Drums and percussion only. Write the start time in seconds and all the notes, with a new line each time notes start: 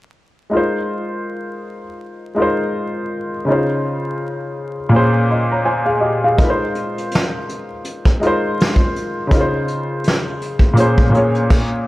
6.39 kick, closed hi-hat
6.75 closed hi-hat
6.98 closed hi-hat
7.11 snare, closed hi-hat
7.49 closed hi-hat
7.84 closed hi-hat
8.05 kick, snare
8.22 closed hi-hat
8.60 snare, closed hi-hat
8.76 kick
8.96 closed hi-hat
9.31 kick, closed hi-hat
9.68 closed hi-hat
10.04 snare, closed hi-hat
10.41 closed hi-hat
10.59 kick
10.77 closed hi-hat
10.98 kick
11.14 closed hi-hat
11.35 closed hi-hat
11.50 kick, crash